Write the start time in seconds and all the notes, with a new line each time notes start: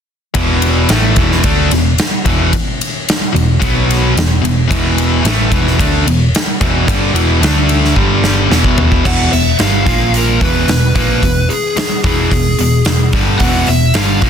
0.34 E1 E2 B2 E3, kick, ride
0.62 ride
0.89 A1 A2 E3 A3, snare, ride
1.16 E1 E2 B2 E3, kick, ride
1.32 snare
1.44 D2 D3 A3 D4, kick, ride
1.71 E1 E2 B2, snare, ride
1.98 snare, ride
2.25 E1 E2 B2 E3, kick, ride
2.53 kick, ride
2.81 ride
3.09 snare, ride
3.33 E1 E2 B2, ride
3.60 B1 B2 F#3 B3, kick, ride
3.91 snare, ride
4.15 E1 E2 B2, snare, ride
4.41 E1 E2 B2, ride
4.68 E1 E2 B2 E3, kick
4.72 B2, ride
4.98 ride
5.22 A1 A2 E3 A3, ride
5.26 A2 E3, snare
5.51 E1 E2 B2 E3, kick, ride
5.67 snare
5.79 D2 D3 A3 D4, kick, ride
6.06 E1 E2 B2, ride
6.35 snare, ride
6.61 E1 E2 B2 E3, kick, ride
6.87 G1 G2 D3 G3, kick, ride
7.13 E1 E2 B2 E3, ride
7.41 D2 D3 A3 D4, snare, ride
7.69 ride
7.85 snare
7.96 G1 G2 D3 G3, kick
8.24 snare
8.51 E1 E2 B2 E3, snare
8.64 kick
8.78 floor tom
8.92 kick
9.05 E1 E2 B2 E3 F#5, kick, crash
9.32 E1 E2 B2 E5, open hi-hat
9.59 G1 G2 D3 G3 F5, snare, open hi-hat
9.85 A#1 A#2 F3 A#3, kick, open hi-hat
10.14 A#4, open hi-hat
10.41 E1 E2 B2 E3 B4, kick, open hi-hat
10.68 E1 E2 B2, snare, open hi-hat
10.95 A#1 A#2 F3 A#3 B4, kick, open hi-hat
11.22 E1 E2 B2, kick, open hi-hat
11.49 G#4, open hi-hat
11.76 muted picked electric bass stroke, muted distorted electric guitar stroke, muted overdriven electric guitar stroke, snare, open hi-hat
12.04 E1 E2 B2 E3 G#4, kick, open hi-hat
12.31 E1 E2 B2, kick, open hi-hat
12.58 E1 E2 B2, open hi-hat
12.85 E1 B2, snare, open hi-hat
12.89 E2
13.13 G1 G2 D3 G3, kick, open hi-hat
13.39 E1 F#5, kick, open hi-hat
13.43 E2 B2 E3
13.67 E1 E2 B2 E5, open hi-hat
13.94 G1 G2 D3 G3 F5, snare, open hi-hat
14.22 A#1 A#2 F3 A#3, kick, open hi-hat